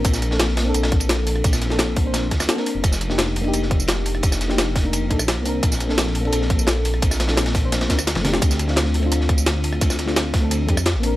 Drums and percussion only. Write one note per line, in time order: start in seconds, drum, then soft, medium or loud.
0.05 kick loud
0.05 closed hi-hat medium
0.05 ride medium
0.05 tambourine soft
0.13 snare medium
0.13 tambourine medium
0.22 closed hi-hat medium
0.22 ride medium
0.22 tambourine soft
0.31 snare medium
0.40 snare loud
0.40 closed hi-hat loud
0.40 ride medium
0.40 tambourine soft
0.49 snare soft
0.57 snare loud
0.57 open hi-hat medium
0.57 ride medium
0.74 closed hi-hat medium
0.74 ride medium
0.74 tambourine soft
0.83 snare loud
0.83 ride medium
0.92 kick loud
0.92 closed hi-hat medium
1.00 ride medium
1.00 tambourine medium
1.09 snare loud
1.09 closed hi-hat medium
1.09 ride medium
1.09 tambourine soft
1.27 open hi-hat medium
1.27 ride medium
1.27 tambourine soft
1.36 cross-stick soft
1.44 kick loud
1.44 closed hi-hat medium
1.44 ride medium
1.44 tambourine medium
1.53 cross-stick soft
1.53 snare medium
1.53 tambourine medium
1.61 snare soft
1.61 closed hi-hat medium
1.61 ride medium
1.61 tambourine soft
1.70 snare soft
1.79 snare loud
1.79 closed hi-hat medium
1.79 ride medium
1.79 tambourine soft
1.96 kick loud
1.96 open hi-hat medium
1.96 ride medium
2.14 snare loud
2.14 closed hi-hat medium
2.14 ride medium
2.14 tambourine soft
2.31 kick medium
2.31 snare soft
2.31 closed hi-hat medium
2.31 ride medium
2.40 cross-stick medium
2.40 snare loud
2.40 ride medium
2.40 tambourine medium
2.49 snare loud
2.49 closed hi-hat medium
2.49 tambourine soft
2.58 snare soft
2.58 ride medium
2.66 open hi-hat medium
2.66 ride medium
2.66 tambourine soft
2.84 kick loud
2.84 closed hi-hat medium
2.84 ride medium
2.84 tambourine medium
2.92 snare medium
2.92 tambourine medium
3.01 closed hi-hat medium
3.01 ride medium
3.01 tambourine soft
3.10 snare medium
3.18 snare loud
3.18 closed hi-hat medium
3.18 ride loud
3.18 tambourine medium
3.26 snare soft
3.36 open hi-hat medium
3.36 ride medium
3.44 ride soft
3.54 closed hi-hat medium
3.54 ride medium
3.54 tambourine soft
3.62 snare soft
3.71 kick loud
3.71 closed hi-hat medium
3.71 ride medium
3.80 tambourine medium
3.88 snare loud
3.88 closed hi-hat medium
3.88 ride medium
3.88 tambourine medium
4.05 open hi-hat medium
4.05 ride medium
4.05 tambourine soft
4.15 cross-stick soft
4.23 kick loud
4.23 closed hi-hat medium
4.23 ride medium
4.23 tambourine medium
4.32 cross-stick soft
4.32 snare medium
4.32 tambourine medium
4.41 snare soft
4.41 closed hi-hat medium
4.41 ride medium
4.41 tambourine soft
4.50 snare soft
4.58 snare loud
4.58 closed hi-hat medium
4.58 ride medium
4.58 tambourine medium
4.76 kick loud
4.76 snare medium
4.76 open hi-hat medium
4.76 ride medium
4.93 closed hi-hat medium
4.93 ride medium
4.93 tambourine medium
5.10 kick medium
5.10 closed hi-hat medium
5.10 ride medium
5.19 cross-stick medium
5.19 tambourine medium
5.28 snare loud
5.28 closed hi-hat medium
5.28 ride medium
5.28 tambourine soft
5.45 open hi-hat medium
5.45 ride medium
5.45 tambourine soft
5.63 kick loud
5.63 closed hi-hat loud
5.63 ride medium
5.63 tambourine medium
5.72 snare medium
5.72 tambourine medium
5.80 closed hi-hat medium
5.80 ride medium
5.80 tambourine soft
5.89 snare medium
5.98 snare loud
5.98 closed hi-hat loud
5.98 ride loud
5.98 tambourine medium
6.07 snare soft
6.15 open hi-hat medium
6.15 ride medium
6.25 ride soft
6.32 closed hi-hat medium
6.32 ride loud
6.32 tambourine medium
6.42 snare soft
6.50 kick loud
6.50 closed hi-hat medium
6.50 ride medium
6.59 tambourine medium
6.67 snare loud
6.67 closed hi-hat medium
6.67 ride medium
6.67 tambourine medium
6.85 open hi-hat medium
6.85 ride medium
6.85 tambourine soft
6.94 cross-stick soft
7.02 kick loud
7.02 closed hi-hat loud
7.02 ride medium
7.02 tambourine medium
7.11 cross-stick soft
7.11 snare medium
7.11 tambourine medium
7.20 snare loud
7.20 closed hi-hat medium
7.20 ride medium
7.20 tambourine soft
7.28 snare loud
7.28 snare soft
7.28 ride medium
7.37 snare loud
7.37 closed hi-hat loud
7.37 ride medium
7.37 tambourine medium
7.46 snare loud
7.46 closed hi-hat soft
7.46 ride medium
7.54 kick loud
7.54 snare soft
7.54 open hi-hat medium
7.54 ride medium
7.54 tambourine soft
7.72 snare loud
7.72 closed hi-hat loud
7.72 ride medium
7.72 tambourine medium
7.81 snare loud
7.81 closed hi-hat soft
7.81 ride medium
7.90 kick medium
7.90 snare loud
7.90 closed hi-hat medium
7.90 ride medium
7.90 tambourine soft
7.99 cross-stick medium
7.99 tambourine medium
8.07 snare loud
8.07 snare medium
8.07 closed hi-hat loud
8.07 ride medium
8.07 tambourine medium
8.15 snare loud
8.15 high tom medium
8.15 ride medium
8.25 snare loud
8.25 open hi-hat medium
8.25 mid tom medium
8.25 ride medium
8.25 tambourine soft
8.33 snare medium
8.42 kick loud
8.42 closed hi-hat loud
8.42 ride medium
8.42 tambourine medium
8.51 snare soft
8.51 tambourine medium
8.59 closed hi-hat medium
8.59 ride medium
8.59 tambourine soft
8.68 snare medium
8.76 snare loud
8.76 closed hi-hat loud
8.76 ride loud
8.76 tambourine soft
8.85 snare soft
8.94 open hi-hat medium
8.94 ride medium
9.03 ride soft
9.12 closed hi-hat loud
9.12 ride medium
9.12 tambourine soft
9.21 snare soft
9.29 kick loud
9.29 closed hi-hat medium
9.29 ride medium
9.38 tambourine medium
9.46 snare loud
9.46 closed hi-hat loud
9.46 ride loud
9.46 tambourine soft
9.64 open hi-hat medium
9.64 ride medium
9.64 tambourine soft
9.73 cross-stick soft
9.81 kick loud
9.81 closed hi-hat medium
9.81 ride loud
9.81 tambourine soft
9.90 cross-stick soft
9.90 snare medium
9.90 tambourine medium
9.99 snare soft
9.99 closed hi-hat medium
9.99 ride medium
9.99 tambourine soft
10.07 snare soft
10.16 snare loud
10.16 closed hi-hat loud
10.16 ride medium
10.16 tambourine medium
10.33 kick loud
10.33 snare medium
10.33 open hi-hat medium
10.33 ride medium
10.51 closed hi-hat loud
10.51 ride medium
10.51 tambourine soft
10.69 kick medium
10.69 closed hi-hat medium
10.69 ride medium
10.77 cross-stick medium
10.77 tambourine medium
10.86 snare loud
10.86 closed hi-hat medium
10.86 ride medium
10.86 tambourine soft
11.03 open hi-hat medium
11.03 ride medium
11.03 tambourine soft